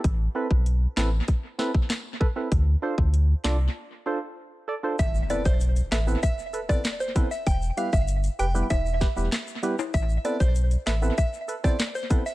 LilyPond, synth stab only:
\new Staff \with { instrumentName = "Synth stab" } { \time 4/4 \key a \minor \tempo 4 = 97 r8 <c' e' a' b'>16 r8. <c' e' a' b'>16 r8. <c' e' a' b'>16 r8. <a' b'>16 <c' e' a' b'>16 | r8 <d' f' a' c''>16 r8. <d' f' a' d''>16 r8. <d' f' a' c''>16 r8. <a' d''>16 <d' f' a' c''>16 | r8 <b c' e' a' b'>16 r8. <a' b'>16 <b c' e' a' b'>16 r8 <a' b'>16 <b c' e' a' b'>16 r8 <b c' e' a' b'>16 r16 | r8 <g b e' g' b'>16 r8. <g' b'>16 <g b e' g' b'>16 r8 <g' b'>16 <g b e' g' b'>16 r8 <g b e' g' b'>16 r16 |
r8 <b c' e' a' b'>16 r8. <a' b'>16 <b c' e' a' b'>16 r8 <a' b'>16 <b c' e' a' c''>16 r8 <b c' e' a' b'>16 r16 | }